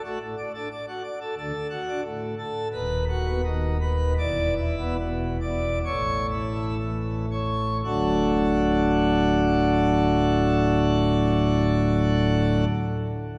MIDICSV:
0, 0, Header, 1, 2, 480
1, 0, Start_track
1, 0, Key_signature, 2, "major"
1, 0, Tempo, 669643
1, 980, Time_signature, 4, 2, 24, 8
1, 1464, Tempo, 700935
1, 2424, Tempo, 745342
1, 2904, Tempo, 797872
1, 3384, Tempo, 862069
1, 3864, Tempo, 946372
1, 4344, Tempo, 1056338
1, 4824, Tempo, 1088929
1, 7261, End_track
2, 0, Start_track
2, 0, Title_t, "Pipe organ"
2, 0, Program_c, 0, 19
2, 29, Note_on_c, 0, 57, 56
2, 30, Note_on_c, 0, 66, 61
2, 132, Note_off_c, 0, 57, 0
2, 132, Note_off_c, 0, 66, 0
2, 148, Note_on_c, 0, 45, 57
2, 250, Note_off_c, 0, 45, 0
2, 271, Note_on_c, 0, 74, 56
2, 371, Note_off_c, 0, 74, 0
2, 391, Note_on_c, 0, 62, 53
2, 391, Note_on_c, 0, 69, 56
2, 491, Note_off_c, 0, 62, 0
2, 491, Note_off_c, 0, 69, 0
2, 513, Note_on_c, 0, 74, 54
2, 612, Note_off_c, 0, 74, 0
2, 632, Note_on_c, 0, 66, 58
2, 734, Note_off_c, 0, 66, 0
2, 746, Note_on_c, 0, 74, 58
2, 851, Note_off_c, 0, 74, 0
2, 867, Note_on_c, 0, 69, 54
2, 966, Note_off_c, 0, 69, 0
2, 986, Note_on_c, 0, 69, 88
2, 987, Note_on_c, 0, 38, 82
2, 990, Note_on_c, 0, 50, 78
2, 1086, Note_off_c, 0, 38, 0
2, 1088, Note_off_c, 0, 50, 0
2, 1199, Note_off_c, 0, 69, 0
2, 1222, Note_on_c, 0, 66, 71
2, 1350, Note_on_c, 0, 62, 66
2, 1438, Note_off_c, 0, 66, 0
2, 1454, Note_off_c, 0, 62, 0
2, 1463, Note_on_c, 0, 45, 74
2, 1672, Note_off_c, 0, 45, 0
2, 1700, Note_on_c, 0, 69, 73
2, 1901, Note_off_c, 0, 69, 0
2, 1934, Note_on_c, 0, 71, 98
2, 1936, Note_on_c, 0, 39, 89
2, 1938, Note_on_c, 0, 27, 86
2, 2150, Note_off_c, 0, 71, 0
2, 2183, Note_on_c, 0, 66, 76
2, 2305, Note_on_c, 0, 59, 73
2, 2400, Note_off_c, 0, 66, 0
2, 2413, Note_off_c, 0, 59, 0
2, 2422, Note_on_c, 0, 51, 71
2, 2634, Note_off_c, 0, 51, 0
2, 2659, Note_on_c, 0, 71, 81
2, 2866, Note_off_c, 0, 71, 0
2, 2878, Note_off_c, 0, 39, 0
2, 2879, Note_off_c, 0, 27, 0
2, 2900, Note_on_c, 0, 28, 92
2, 2902, Note_on_c, 0, 40, 96
2, 2903, Note_on_c, 0, 74, 108
2, 3113, Note_off_c, 0, 74, 0
2, 3136, Note_on_c, 0, 64, 81
2, 3261, Note_on_c, 0, 59, 77
2, 3356, Note_off_c, 0, 64, 0
2, 3371, Note_off_c, 0, 59, 0
2, 3386, Note_on_c, 0, 47, 88
2, 3595, Note_off_c, 0, 47, 0
2, 3622, Note_on_c, 0, 74, 84
2, 3828, Note_off_c, 0, 74, 0
2, 3840, Note_off_c, 0, 28, 0
2, 3841, Note_off_c, 0, 40, 0
2, 3867, Note_on_c, 0, 33, 90
2, 3867, Note_on_c, 0, 73, 99
2, 3869, Note_on_c, 0, 45, 96
2, 4074, Note_off_c, 0, 73, 0
2, 4097, Note_on_c, 0, 64, 81
2, 4217, Note_on_c, 0, 57, 74
2, 4318, Note_off_c, 0, 64, 0
2, 4330, Note_off_c, 0, 57, 0
2, 4342, Note_on_c, 0, 52, 67
2, 4553, Note_off_c, 0, 52, 0
2, 4581, Note_on_c, 0, 73, 70
2, 4788, Note_off_c, 0, 73, 0
2, 4807, Note_off_c, 0, 33, 0
2, 4808, Note_off_c, 0, 45, 0
2, 4820, Note_on_c, 0, 38, 64
2, 4821, Note_on_c, 0, 45, 61
2, 4822, Note_on_c, 0, 26, 69
2, 4822, Note_on_c, 0, 54, 57
2, 4822, Note_on_c, 0, 57, 55
2, 4822, Note_on_c, 0, 66, 55
2, 4823, Note_on_c, 0, 62, 61
2, 6935, Note_off_c, 0, 38, 0
2, 6936, Note_off_c, 0, 45, 0
2, 6936, Note_off_c, 0, 54, 0
2, 6936, Note_off_c, 0, 57, 0
2, 6937, Note_off_c, 0, 26, 0
2, 6937, Note_off_c, 0, 66, 0
2, 6938, Note_off_c, 0, 62, 0
2, 7261, End_track
0, 0, End_of_file